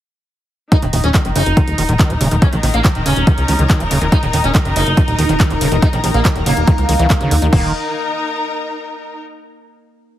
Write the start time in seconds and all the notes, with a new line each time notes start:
0.72 D#3 D#4, kick, closed hi-hat
0.82 D#1 C#3 D#3, closed hi-hat
0.93 D#1 C#3 D#3, open hi-hat
1.04 D#1 C#4, closed hi-hat
1.14 D#3, kick, clap, closed hi-hat
1.22 F#1 D#3 A#4, closed hi-hat
1.36 F#1 C#3 D#4 A#5, open hi-hat
1.46 F#1, closed hi-hat
1.57 D#3, kick, closed hi-hat
1.68 D#1, closed hi-hat
1.78 D#1 D#3, open hi-hat
1.89 D#1 D#3, closed hi-hat
1.99 D#3, kick, clap, closed hi-hat
2.10 D#1 F#3, closed hi-hat
2.21 D#1 C#3, open hi-hat
2.31 D#1 D#3, closed hi-hat
2.42 D#3 C#4, kick, closed hi-hat
2.53 A#1 C#3 D#3, closed hi-hat
2.63 A#1 C#3 D#3, open hi-hat
2.74 A#1 A#3, closed hi-hat
2.85 D#3, kick, clap, closed hi-hat
2.95 D#1 D#3, closed hi-hat
3.06 D#1 C#3 C#4, open hi-hat
3.16 D#1, closed hi-hat
3.27 D#3, kick, closed hi-hat
3.38 C#2, closed hi-hat
3.48 C#2 D#3, open hi-hat
3.59 C#2 D#3, closed hi-hat
3.70 D#3, kick, clap, closed hi-hat
3.80 D#1 F#3, closed hi-hat
3.91 D#1 C#3, open hi-hat
4.02 D#1 D#3, closed hi-hat
4.12 D#3 D#4 A#4, kick, closed hi-hat
4.23 D#1 C#3 D#3, closed hi-hat
4.33 D#1 C#3 D#3, open hi-hat
4.44 D#1 C#4, closed hi-hat
4.55 D#3, kick, clap, closed hi-hat
4.65 F#1 D#3, closed hi-hat
4.76 F#1 C#3 D#4, open hi-hat
4.87 F#1, closed hi-hat
4.97 D#3, kick, closed hi-hat
5.08 D#1, closed hi-hat
5.19 D#1 D#3, open hi-hat
5.29 D#1 D#3, closed hi-hat
5.40 D#3, kick, clap, closed hi-hat
5.50 D#1 F#3, closed hi-hat
5.61 D#1 C#3, open hi-hat
5.72 D#1 D#3, closed hi-hat
5.82 D#3 D#4, kick, closed hi-hat
5.93 A#1 C#3 D#3, closed hi-hat
6.04 A#1 C#3 D#3, open hi-hat
6.14 A#1 A#3, closed hi-hat
6.25 D#3, kick, clap, closed hi-hat
6.36 D#1 D#3, closed hi-hat
6.46 D#1 C#3 A#3, open hi-hat
6.57 D#1, closed hi-hat
6.67 D#3, kick, closed hi-hat
6.78 C#2, closed hi-hat
6.89 C#2 D#3, open hi-hat
6.99 C#2 E3, closed hi-hat
7.10 D#3, kick, clap, closed hi-hat
7.21 D#2 C#3, closed hi-hat
7.31 D#2 D#3, open hi-hat
7.42 D#2 D#3, closed hi-hat
7.53 D#1 D#3 A#3 D#4, kick, crash
7.59 A#4
7.65 A#5